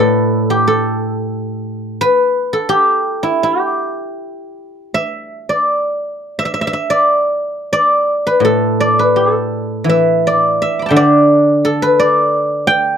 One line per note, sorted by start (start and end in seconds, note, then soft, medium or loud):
0.00 2.00 A2 medium
0.00 0.67 A4 medium
0.00 1.95 B4 medium
0.00 1.14 D5 medium
0.50 2.69 G4 medium
0.68 2.53 A4 medium
2.01 4.06 B4 loud
2.53 4.73 A4 medium
2.69 3.43 G4 medium
3.23 5.84 E4 medium
3.43 5.79 G4 medium
4.94 6.38 E5 medium
5.49 6.90 D5 medium
6.39 6.45 E5 medium
6.45 6.53 E5 medium
6.54 6.61 E5 medium
6.61 6.67 E5 medium
6.67 6.73 E5 medium
6.73 8.46 E5 medium
6.90 7.72 D5 medium
7.73 8.80 D5 medium
8.27 8.99 B4 medium
8.40 10.58 A2 medium
8.45 9.16 A4 medium
8.80 10.27 D5 medium
8.99 11.04 B4 medium
9.16 11.36 A4 medium
9.84 11.94 E3 medium
9.89 10.61 E5 medium
10.27 10.96 D5 medium
10.62 10.91 E5 medium
10.79 12.17 B5 soft
10.79 12.01 D6 soft
10.86 12.44 G5 soft
10.86 12.31 A5 soft
10.91 12.95 D3 medium
10.91 12.64 E5 medium
10.96 11.99 D5 medium
11.65 12.97 A4 medium
11.82 12.97 B4 medium
12.00 12.97 D5 medium
12.67 12.97 G5 loud